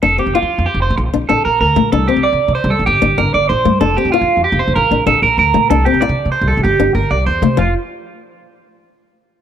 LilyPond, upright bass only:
\new Staff \with { instrumentName = "Upright bass" } { \clef bass \time 12/8 \key f \major \tempo 4. = 127 f,,8 r16 f,,16 r16 f,16 r16 f,16 r16 f,,8 a,,16 bes,,8 bes,,8 bes,,16 r16 bes,,8 d,8 bes,,8 | c,8 r16 c,16 r16 c16 r16 c16 r16 c,8 a,,16 g,,8 g,,8 g,,16 r16 g,,8 bes,,8 g,8 | f,,8 r16 f,,16 r16 f,16 r16 f,16 r16 f,,8 f,,16 bes,,8 bes,,8 bes,,16 r16 bes,,8 d,8 bes,8 | c,8 r16 c,16 r16 c16 r16 c16 r16 c,8 c,16 g,,8 g,,8 g,,16 r16 c,8 e,8 c8 |
f,,8 r1 r4. | }